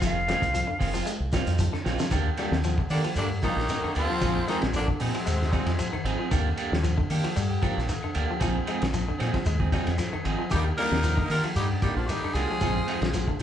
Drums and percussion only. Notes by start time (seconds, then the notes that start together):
0.02 kick, closed hi-hat, claves, shekere
0.29 snare, closed hi-hat, claves
0.42 kick, closed hi-hat, shekere
0.54 closed hi-hat, shekere
0.81 kick, open hi-hat, claves, shekere
0.94 shekere
1.06 closed hi-hat, shekere
1.32 kick, snare, closed hi-hat, claves, shekere
1.46 snare, closed hi-hat, shekere
1.59 kick, closed hi-hat, shekere
1.73 snare, claves
1.86 snare, shekere
1.99 snare, shekere
2.11 kick, ride bell, claves, shekere
2.37 snare, ride bell, claves, shekere
2.52 snare
2.64 ride bell, shekere
2.78 kick
2.90 open hi-hat, claves, shekere
3.04 ride bell
3.15 ride bell, shekere
3.42 kick, ride bell, claves, shekere
3.59 snare
3.69 snare, ride bell, shekere
3.84 claves
3.95 ride bell, shekere
4.21 kick, ride bell, claves, shekere
4.48 snare, ride bell, claves, shekere
4.62 snare, ride bell
4.73 ride bell, shekere
4.88 kick
5.00 open hi-hat, claves, shekere
5.15 ride bell
5.27 ride bell, shekere
5.42 snare
5.53 kick, ride bell, claves, shekere
5.67 snare, ride bell
5.79 ride bell, shekere
5.93 claves
6.06 ride bell, shekere
6.31 kick, ride bell, claves, shekere
6.58 ride bell, claves, shekere
6.73 snare
6.84 ride bell, shekere
6.98 kick
7.10 open hi-hat, claves, shekere
7.24 ride bell
7.36 ride bell, shekere
7.63 kick, ride bell, claves, shekere
7.78 snare
7.89 ride bell, shekere
8.03 claves
8.15 ride bell, shekere
8.41 kick, ride bell, claves, shekere
8.67 ride bell, claves, shekere
8.82 snare, ride bell
8.93 ride bell, shekere
9.20 snare, ride bell, claves, shekere
9.34 kick, snare, ride bell
9.45 ride bell, shekere
9.60 kick
9.72 kick, snare, ride bell, claves, shekere
9.87 snare, ride bell
9.98 snare, ride bell, shekere
10.13 claves
10.25 ride bell, shekere
10.50 kick, ride bell, claves, shekere
10.78 snare, ride bell, claves, shekere
10.92 snare
11.03 ride bell, shekere
11.18 kick
11.30 open hi-hat, claves, shekere
11.44 ride bell
11.56 ride bell, shekere
11.82 kick, ride bell, claves, shekere
12.09 ride bell, shekere
12.24 claves
12.35 snare, ride bell, shekere
12.61 kick, ride bell, claves, shekere
12.88 ride bell, claves, shekere
13.02 snare, ride bell
13.14 ride bell, shekere
13.28 kick